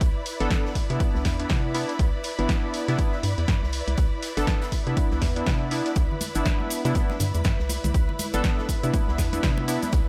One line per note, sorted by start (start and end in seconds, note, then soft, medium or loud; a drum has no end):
0.00 0.13 C2 loud
0.00 10.09 E4 medium
0.00 5.95 B4 medium
0.00 10.09 B4 medium
0.00 5.92 D5 medium
0.00 10.09 D5 medium
0.00 5.95 B5 medium
0.00 10.09 B5 medium
0.00 kick loud
0.00 closed hi-hat medium
0.26 closed hi-hat medium
0.26 open hi-hat loud
0.40 0.49 G1 medium
0.40 0.67 B3 loud
0.40 0.67 D4 medium
0.40 0.67 A4 loud
0.40 closed hi-hat medium
0.50 kick loud
0.50 snare loud
0.50 closed hi-hat medium
0.66 snare medium
0.75 kick medium
0.75 closed hi-hat medium
0.75 open hi-hat loud
0.90 0.98 C3 medium
0.90 1.36 B3 medium
0.90 1.36 D4 medium
0.90 1.36 E4 medium
0.90 closed hi-hat medium
1.00 kick loud
1.00 closed hi-hat medium
1.15 1.23 C2 loud
1.15 snare soft
1.25 1.46 E2 medium
1.25 kick medium
1.25 snare medium
1.25 closed hi-hat medium
1.25 open hi-hat loud
1.40 1.72 B3 medium
1.40 1.72 D4 medium
1.40 1.72 E4 medium
1.40 closed hi-hat medium
1.49 1.85 C3 loud
1.49 kick loud
1.49 snare loud
1.49 closed hi-hat medium
1.49 open hi-hat medium
1.74 1.93 B3 medium
1.74 1.93 D4 medium
1.74 1.93 E4 medium
1.74 closed hi-hat medium
1.74 open hi-hat loud
1.89 snare medium
1.89 closed hi-hat medium
1.99 2.11 C2 loud
1.99 kick loud
1.99 closed hi-hat medium
2.23 closed hi-hat medium
2.23 open hi-hat loud
2.39 2.47 G1 medium
2.39 2.85 B3 medium
2.39 2.85 D4 medium
2.39 2.85 E4 medium
2.39 closed hi-hat medium
2.49 kick loud
2.49 snare loud
2.49 closed hi-hat medium
2.74 closed hi-hat medium
2.74 open hi-hat loud
2.88 2.97 C3 medium
2.88 3.15 B3 medium
2.88 3.15 D4 medium
2.88 3.15 E4 loud
2.88 snare soft
2.88 closed hi-hat soft
2.99 kick loud
2.99 closed hi-hat medium
3.13 snare soft
3.23 3.35 G2 medium
3.23 closed hi-hat medium
3.23 open hi-hat loud
3.38 3.46 E2 medium
3.38 closed hi-hat soft
3.48 3.60 G2 medium
3.48 kick loud
3.48 snare loud
3.48 closed hi-hat medium
3.63 3.82 C2 medium
3.63 snare medium
3.72 closed hi-hat medium
3.72 open hi-hat loud
3.88 3.96 C2 medium
3.88 closed hi-hat medium
3.97 4.10 C2 loud
3.97 kick loud
3.97 closed hi-hat medium
4.22 snare loud
4.22 closed hi-hat medium
4.22 open hi-hat loud
4.37 4.45 G1 medium
4.37 4.64 B3 medium
4.37 4.64 D4 medium
4.37 4.64 A4 loud
4.37 snare loud
4.37 closed hi-hat medium
4.47 kick loud
4.47 snare loud
4.47 closed hi-hat medium
4.61 snare loud
4.61 closed hi-hat medium
4.72 kick medium
4.72 closed hi-hat medium
4.72 open hi-hat loud
4.87 4.95 C3 medium
4.87 5.33 B3 medium
4.87 5.33 D4 medium
4.87 5.33 E4 medium
4.87 closed hi-hat soft
4.97 kick loud
4.97 closed hi-hat medium
5.11 5.20 C2 loud
5.11 snare soft
5.22 5.43 E2 medium
5.22 kick medium
5.22 snare medium
5.22 closed hi-hat medium
5.22 open hi-hat loud
5.36 5.69 B3 medium
5.36 5.69 D4 medium
5.36 5.69 E4 medium
5.36 closed hi-hat soft
5.46 5.82 C3 loud
5.46 kick loud
5.46 snare loud
5.46 closed hi-hat medium
5.46 open hi-hat medium
5.71 5.89 B3 medium
5.71 5.89 D4 medium
5.71 5.89 E4 medium
5.71 closed hi-hat medium
5.71 open hi-hat loud
5.86 snare medium
5.86 closed hi-hat soft
5.96 6.08 C2 loud
5.96 10.09 B4 medium
5.96 10.09 E5 medium
5.96 10.09 B5 medium
5.96 kick loud
5.96 closed hi-hat medium
5.96 cabasa soft
6.11 low conga medium
6.21 closed hi-hat medium
6.21 open hi-hat loud
6.21 muted conga soft
6.21 high conga medium
6.21 cabasa medium
6.35 6.44 G1 medium
6.35 6.81 B3 medium
6.35 6.82 D4 medium
6.35 6.82 E4 medium
6.35 closed hi-hat medium
6.35 cabasa medium
6.45 kick loud
6.45 snare loud
6.45 closed hi-hat medium
6.45 muted conga medium
6.45 cabasa soft
6.60 high conga medium
6.70 closed hi-hat medium
6.70 open hi-hat loud
6.70 cabasa loud
6.85 6.93 C3 medium
6.85 7.11 B3 medium
6.85 7.11 D4 medium
6.85 7.11 E4 loud
6.85 snare soft
6.85 closed hi-hat soft
6.85 muted conga soft
6.85 cabasa soft
6.95 kick loud
6.95 closed hi-hat medium
6.95 high conga loud
6.95 cabasa soft
7.10 snare soft
7.10 muted conga medium
7.20 7.32 G2 medium
7.20 closed hi-hat medium
7.20 open hi-hat loud
7.20 low conga medium
7.20 cabasa loud
7.34 7.43 E2 medium
7.34 closed hi-hat soft
7.34 high conga medium
7.34 cabasa medium
7.44 7.57 G2 medium
7.44 kick loud
7.44 snare loud
7.44 closed hi-hat medium
7.44 muted conga medium
7.44 cabasa soft
7.59 7.79 C2 medium
7.59 snare medium
7.69 closed hi-hat medium
7.69 open hi-hat loud
7.69 muted conga medium
7.69 cabasa medium
7.84 7.93 C2 medium
7.84 closed hi-hat soft
7.84 high conga medium
7.84 low conga medium
7.84 cabasa medium
7.94 8.06 C2 loud
7.94 kick loud
7.94 closed hi-hat medium
7.94 cabasa soft
8.09 muted conga medium
8.09 low conga medium
8.19 closed hi-hat medium
8.19 open hi-hat loud
8.19 high conga medium
8.19 cabasa medium
8.34 8.42 G1 medium
8.34 8.60 B3 medium
8.34 8.60 D4 medium
8.34 8.60 A4 loud
8.34 closed hi-hat medium
8.34 muted conga medium
8.34 cabasa medium
8.44 kick loud
8.44 snare loud
8.44 closed hi-hat medium
8.44 cabasa soft
8.59 snare soft
8.59 high conga medium
8.69 kick medium
8.69 closed hi-hat medium
8.69 open hi-hat loud
8.69 muted conga soft
8.69 cabasa medium
8.83 8.92 C3 medium
8.83 9.29 B3 medium
8.83 9.29 D4 medium
8.83 9.29 E4 loud
8.83 closed hi-hat medium
8.83 cabasa soft
8.93 kick loud
8.93 closed hi-hat medium
8.93 muted conga medium
8.93 high conga medium
8.93 cabasa soft
9.08 9.17 C2 loud
9.08 snare soft
9.18 9.40 E2 medium
9.18 kick medium
9.18 snare medium
9.18 closed hi-hat medium
9.18 open hi-hat medium
9.18 cabasa medium
9.33 9.65 B3 medium
9.33 9.66 D4 medium
9.33 9.66 E4 loud
9.33 closed hi-hat medium
9.33 muted conga soft
9.33 high conga medium
9.33 cabasa soft
9.43 9.78 C3 loud
9.43 kick loud
9.43 snare loud
9.43 closed hi-hat medium
9.43 open hi-hat medium
9.43 cabasa soft
9.57 muted conga medium
9.68 9.86 B3 medium
9.68 9.86 D4 medium
9.68 9.86 E4 loud
9.68 closed hi-hat medium
9.68 open hi-hat loud
9.68 cabasa medium
9.83 snare medium
9.83 closed hi-hat medium
9.83 high conga medium
9.83 cabasa soft
9.92 10.05 C2 loud
9.92 kick loud
9.92 closed hi-hat medium
9.92 riser medium
9.92 muted conga medium
9.92 cabasa soft